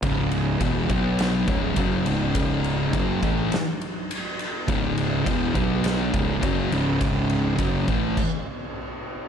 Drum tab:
CC |--------|--------|--------|----x---|
RD |xxxxxxxx|xxxxxxxx|xxxxxxxx|xxxx----|
SD |----o---|----o---|----o---|--------|
BD |o-oo-oo-|o-oo----|o-oo-oo-|o-ooo---|